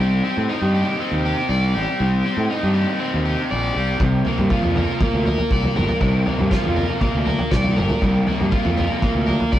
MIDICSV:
0, 0, Header, 1, 4, 480
1, 0, Start_track
1, 0, Tempo, 501672
1, 1911, Time_signature, 4, 2, 24, 8
1, 9177, End_track
2, 0, Start_track
2, 0, Title_t, "Overdriven electric guitar"
2, 0, Program_c, 0, 29
2, 0, Note_on_c, 0, 63, 58
2, 0, Note_on_c, 0, 67, 67
2, 0, Note_on_c, 0, 74, 73
2, 2, Note_on_c, 0, 60, 63
2, 223, Note_off_c, 0, 60, 0
2, 235, Note_on_c, 0, 60, 67
2, 466, Note_off_c, 0, 63, 0
2, 470, Note_on_c, 0, 63, 62
2, 705, Note_off_c, 0, 67, 0
2, 709, Note_on_c, 0, 67, 66
2, 948, Note_off_c, 0, 60, 0
2, 959, Note_on_c, 0, 60, 66
2, 988, Note_off_c, 0, 74, 0
2, 1188, Note_off_c, 0, 67, 0
2, 1200, Note_on_c, 0, 67, 59
2, 1430, Note_on_c, 0, 74, 70
2, 1658, Note_off_c, 0, 67, 0
2, 1670, Note_off_c, 0, 63, 0
2, 1670, Note_on_c, 0, 67, 65
2, 1898, Note_off_c, 0, 60, 0
2, 1910, Note_on_c, 0, 60, 62
2, 2143, Note_off_c, 0, 60, 0
2, 2154, Note_on_c, 0, 60, 63
2, 2390, Note_on_c, 0, 63, 66
2, 2607, Note_off_c, 0, 67, 0
2, 2618, Note_on_c, 0, 67, 59
2, 2857, Note_off_c, 0, 60, 0
2, 2868, Note_on_c, 0, 60, 63
2, 2897, Note_off_c, 0, 74, 0
2, 3103, Note_off_c, 0, 67, 0
2, 3115, Note_on_c, 0, 67, 59
2, 3358, Note_on_c, 0, 74, 71
2, 3587, Note_off_c, 0, 67, 0
2, 3591, Note_off_c, 0, 63, 0
2, 3599, Note_on_c, 0, 67, 60
2, 3830, Note_off_c, 0, 60, 0
2, 3835, Note_off_c, 0, 67, 0
2, 3840, Note_on_c, 0, 48, 66
2, 3868, Note_off_c, 0, 74, 0
2, 4079, Note_on_c, 0, 58, 66
2, 4315, Note_on_c, 0, 65, 60
2, 4555, Note_on_c, 0, 70, 60
2, 4796, Note_off_c, 0, 58, 0
2, 4800, Note_on_c, 0, 58, 66
2, 5033, Note_off_c, 0, 70, 0
2, 5036, Note_off_c, 0, 48, 0
2, 5037, Note_on_c, 0, 70, 60
2, 5282, Note_on_c, 0, 74, 70
2, 5506, Note_off_c, 0, 70, 0
2, 5510, Note_on_c, 0, 70, 69
2, 5747, Note_on_c, 0, 48, 68
2, 5989, Note_off_c, 0, 58, 0
2, 5993, Note_on_c, 0, 58, 62
2, 6225, Note_off_c, 0, 65, 0
2, 6229, Note_on_c, 0, 65, 62
2, 6465, Note_off_c, 0, 70, 0
2, 6469, Note_on_c, 0, 70, 61
2, 6699, Note_off_c, 0, 58, 0
2, 6703, Note_on_c, 0, 58, 72
2, 6933, Note_off_c, 0, 70, 0
2, 6937, Note_on_c, 0, 70, 63
2, 6950, Note_off_c, 0, 48, 0
2, 7182, Note_off_c, 0, 74, 0
2, 7186, Note_on_c, 0, 74, 72
2, 7423, Note_off_c, 0, 70, 0
2, 7427, Note_on_c, 0, 70, 69
2, 7665, Note_on_c, 0, 48, 70
2, 7911, Note_off_c, 0, 58, 0
2, 7915, Note_on_c, 0, 58, 70
2, 8141, Note_off_c, 0, 65, 0
2, 8145, Note_on_c, 0, 65, 63
2, 8385, Note_off_c, 0, 70, 0
2, 8389, Note_on_c, 0, 70, 61
2, 8621, Note_off_c, 0, 58, 0
2, 8632, Note_on_c, 0, 58, 66
2, 8852, Note_off_c, 0, 70, 0
2, 8863, Note_on_c, 0, 70, 61
2, 8869, Note_off_c, 0, 48, 0
2, 9105, Note_off_c, 0, 74, 0
2, 9109, Note_on_c, 0, 74, 72
2, 9177, Note_off_c, 0, 58, 0
2, 9177, Note_off_c, 0, 65, 0
2, 9177, Note_off_c, 0, 70, 0
2, 9177, Note_off_c, 0, 74, 0
2, 9177, End_track
3, 0, Start_track
3, 0, Title_t, "Fingered electric bass"
3, 0, Program_c, 1, 33
3, 0, Note_on_c, 1, 36, 97
3, 192, Note_off_c, 1, 36, 0
3, 356, Note_on_c, 1, 45, 84
3, 455, Note_off_c, 1, 45, 0
3, 588, Note_on_c, 1, 43, 83
3, 790, Note_off_c, 1, 43, 0
3, 1067, Note_on_c, 1, 39, 70
3, 1269, Note_off_c, 1, 39, 0
3, 1426, Note_on_c, 1, 36, 88
3, 1674, Note_off_c, 1, 36, 0
3, 1674, Note_on_c, 1, 33, 73
3, 1773, Note_off_c, 1, 33, 0
3, 1914, Note_on_c, 1, 36, 91
3, 2113, Note_off_c, 1, 36, 0
3, 2267, Note_on_c, 1, 45, 83
3, 2369, Note_off_c, 1, 45, 0
3, 2517, Note_on_c, 1, 43, 77
3, 2715, Note_off_c, 1, 43, 0
3, 3004, Note_on_c, 1, 39, 74
3, 3199, Note_off_c, 1, 39, 0
3, 3366, Note_on_c, 1, 34, 80
3, 3575, Note_off_c, 1, 34, 0
3, 3598, Note_on_c, 1, 36, 73
3, 3811, Note_off_c, 1, 36, 0
3, 3830, Note_on_c, 1, 36, 94
3, 4031, Note_off_c, 1, 36, 0
3, 4200, Note_on_c, 1, 43, 87
3, 4297, Note_off_c, 1, 43, 0
3, 4434, Note_on_c, 1, 41, 76
3, 4633, Note_off_c, 1, 41, 0
3, 4913, Note_on_c, 1, 38, 71
3, 5113, Note_off_c, 1, 38, 0
3, 5270, Note_on_c, 1, 36, 88
3, 5518, Note_on_c, 1, 31, 80
3, 5533, Note_off_c, 1, 36, 0
3, 5616, Note_off_c, 1, 31, 0
3, 5753, Note_on_c, 1, 36, 93
3, 5953, Note_off_c, 1, 36, 0
3, 6118, Note_on_c, 1, 43, 89
3, 6216, Note_off_c, 1, 43, 0
3, 6359, Note_on_c, 1, 41, 79
3, 6557, Note_off_c, 1, 41, 0
3, 6841, Note_on_c, 1, 38, 78
3, 7038, Note_off_c, 1, 38, 0
3, 7195, Note_on_c, 1, 36, 85
3, 7443, Note_on_c, 1, 31, 77
3, 7457, Note_off_c, 1, 36, 0
3, 7539, Note_off_c, 1, 31, 0
3, 7674, Note_on_c, 1, 36, 96
3, 7875, Note_off_c, 1, 36, 0
3, 8040, Note_on_c, 1, 43, 80
3, 8137, Note_off_c, 1, 43, 0
3, 8279, Note_on_c, 1, 41, 75
3, 8477, Note_off_c, 1, 41, 0
3, 8754, Note_on_c, 1, 38, 77
3, 8954, Note_off_c, 1, 38, 0
3, 9116, Note_on_c, 1, 36, 93
3, 9177, Note_off_c, 1, 36, 0
3, 9177, End_track
4, 0, Start_track
4, 0, Title_t, "Drums"
4, 3828, Note_on_c, 9, 36, 107
4, 3829, Note_on_c, 9, 43, 76
4, 3924, Note_off_c, 9, 36, 0
4, 3925, Note_off_c, 9, 43, 0
4, 4066, Note_on_c, 9, 43, 81
4, 4162, Note_off_c, 9, 43, 0
4, 4190, Note_on_c, 9, 43, 75
4, 4286, Note_off_c, 9, 43, 0
4, 4308, Note_on_c, 9, 36, 106
4, 4404, Note_off_c, 9, 36, 0
4, 4429, Note_on_c, 9, 43, 79
4, 4436, Note_on_c, 9, 63, 62
4, 4524, Note_off_c, 9, 43, 0
4, 4532, Note_off_c, 9, 63, 0
4, 4552, Note_on_c, 9, 43, 80
4, 4554, Note_on_c, 9, 63, 64
4, 4554, Note_on_c, 9, 64, 65
4, 4648, Note_off_c, 9, 43, 0
4, 4649, Note_off_c, 9, 63, 0
4, 4649, Note_off_c, 9, 64, 0
4, 4789, Note_on_c, 9, 43, 80
4, 4790, Note_on_c, 9, 36, 108
4, 4885, Note_off_c, 9, 43, 0
4, 4886, Note_off_c, 9, 36, 0
4, 5030, Note_on_c, 9, 43, 76
4, 5034, Note_on_c, 9, 63, 74
4, 5126, Note_off_c, 9, 43, 0
4, 5130, Note_off_c, 9, 63, 0
4, 5149, Note_on_c, 9, 43, 76
4, 5245, Note_off_c, 9, 43, 0
4, 5270, Note_on_c, 9, 36, 97
4, 5365, Note_off_c, 9, 36, 0
4, 5392, Note_on_c, 9, 43, 76
4, 5487, Note_off_c, 9, 43, 0
4, 5512, Note_on_c, 9, 47, 76
4, 5517, Note_on_c, 9, 64, 67
4, 5607, Note_off_c, 9, 47, 0
4, 5613, Note_off_c, 9, 64, 0
4, 5632, Note_on_c, 9, 43, 79
4, 5633, Note_on_c, 9, 63, 65
4, 5728, Note_off_c, 9, 43, 0
4, 5728, Note_off_c, 9, 63, 0
4, 5749, Note_on_c, 9, 43, 75
4, 5750, Note_on_c, 9, 36, 96
4, 5845, Note_off_c, 9, 43, 0
4, 5846, Note_off_c, 9, 36, 0
4, 5989, Note_on_c, 9, 43, 75
4, 6085, Note_off_c, 9, 43, 0
4, 6112, Note_on_c, 9, 43, 77
4, 6207, Note_off_c, 9, 43, 0
4, 6232, Note_on_c, 9, 36, 107
4, 6234, Note_on_c, 9, 38, 71
4, 6327, Note_off_c, 9, 36, 0
4, 6330, Note_off_c, 9, 38, 0
4, 6352, Note_on_c, 9, 43, 72
4, 6353, Note_on_c, 9, 63, 71
4, 6447, Note_off_c, 9, 43, 0
4, 6449, Note_off_c, 9, 63, 0
4, 6470, Note_on_c, 9, 43, 81
4, 6470, Note_on_c, 9, 63, 70
4, 6470, Note_on_c, 9, 64, 74
4, 6566, Note_off_c, 9, 43, 0
4, 6566, Note_off_c, 9, 63, 0
4, 6566, Note_off_c, 9, 64, 0
4, 6594, Note_on_c, 9, 63, 69
4, 6690, Note_off_c, 9, 63, 0
4, 6708, Note_on_c, 9, 43, 85
4, 6710, Note_on_c, 9, 36, 106
4, 6804, Note_off_c, 9, 43, 0
4, 6806, Note_off_c, 9, 36, 0
4, 6952, Note_on_c, 9, 43, 76
4, 6960, Note_on_c, 9, 63, 82
4, 7048, Note_off_c, 9, 43, 0
4, 7056, Note_off_c, 9, 63, 0
4, 7070, Note_on_c, 9, 43, 79
4, 7165, Note_off_c, 9, 43, 0
4, 7192, Note_on_c, 9, 36, 104
4, 7193, Note_on_c, 9, 47, 72
4, 7194, Note_on_c, 9, 38, 77
4, 7288, Note_off_c, 9, 36, 0
4, 7288, Note_off_c, 9, 47, 0
4, 7289, Note_off_c, 9, 38, 0
4, 7314, Note_on_c, 9, 43, 73
4, 7410, Note_off_c, 9, 43, 0
4, 7435, Note_on_c, 9, 47, 73
4, 7439, Note_on_c, 9, 64, 69
4, 7530, Note_off_c, 9, 47, 0
4, 7535, Note_off_c, 9, 64, 0
4, 7554, Note_on_c, 9, 43, 79
4, 7554, Note_on_c, 9, 47, 74
4, 7563, Note_on_c, 9, 63, 74
4, 7650, Note_off_c, 9, 43, 0
4, 7650, Note_off_c, 9, 47, 0
4, 7659, Note_off_c, 9, 63, 0
4, 7672, Note_on_c, 9, 43, 74
4, 7674, Note_on_c, 9, 36, 98
4, 7768, Note_off_c, 9, 43, 0
4, 7769, Note_off_c, 9, 36, 0
4, 7912, Note_on_c, 9, 43, 75
4, 8008, Note_off_c, 9, 43, 0
4, 8038, Note_on_c, 9, 43, 74
4, 8134, Note_off_c, 9, 43, 0
4, 8154, Note_on_c, 9, 36, 107
4, 8249, Note_off_c, 9, 36, 0
4, 8276, Note_on_c, 9, 43, 72
4, 8285, Note_on_c, 9, 63, 72
4, 8372, Note_off_c, 9, 43, 0
4, 8381, Note_off_c, 9, 63, 0
4, 8396, Note_on_c, 9, 43, 78
4, 8402, Note_on_c, 9, 63, 70
4, 8402, Note_on_c, 9, 64, 74
4, 8492, Note_off_c, 9, 43, 0
4, 8498, Note_off_c, 9, 63, 0
4, 8498, Note_off_c, 9, 64, 0
4, 8522, Note_on_c, 9, 63, 72
4, 8618, Note_off_c, 9, 63, 0
4, 8633, Note_on_c, 9, 43, 83
4, 8635, Note_on_c, 9, 36, 106
4, 8729, Note_off_c, 9, 43, 0
4, 8730, Note_off_c, 9, 36, 0
4, 8878, Note_on_c, 9, 43, 74
4, 8882, Note_on_c, 9, 63, 78
4, 8974, Note_off_c, 9, 43, 0
4, 8978, Note_off_c, 9, 63, 0
4, 8996, Note_on_c, 9, 43, 74
4, 9092, Note_off_c, 9, 43, 0
4, 9116, Note_on_c, 9, 36, 102
4, 9177, Note_off_c, 9, 36, 0
4, 9177, End_track
0, 0, End_of_file